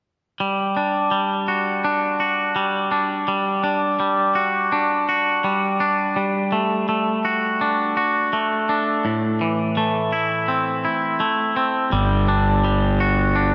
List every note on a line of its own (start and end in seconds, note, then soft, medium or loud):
0.40 1.10 G3 soft
0.77 1.84 D4 soft
1.11 2.55 G3 soft
1.48 2.20 F#4 soft
1.84 2.91 D4 soft
2.20 4.03 F#4 soft
2.56 3.27 G3 soft
2.91 3.63 D4 soft
3.28 3.98 G3 soft
3.64 4.71 D4 soft
4.00 5.43 G3 soft
4.35 5.08 F#4 soft
4.72 5.79 D4 soft
5.09 6.17 F#4 soft
5.44 6.15 G3 soft
5.80 6.17 D4 soft
6.16 7.97 G3 soft
6.52 6.88 A3 soft
6.89 8.32 A3 soft
7.25 7.96 F#4 soft
7.61 8.68 D4 soft
7.97 9.05 F#4 soft
8.33 9.05 A3 soft
8.69 9.05 D4 soft
9.05 10.85 A2 soft
9.41 11.22 E3 soft
9.77 11.19 A3 soft
10.13 10.83 E4 soft
10.48 11.55 C4 soft
10.85 11.93 E4 soft
11.20 11.92 A3 soft
11.56 11.93 C4 soft
11.92 13.55 G1 soft
11.92 12.63 G3 soft
12.28 13.35 D4 soft
12.65 13.55 G3 soft
13.00 13.55 F#4 soft
13.36 13.55 D4 soft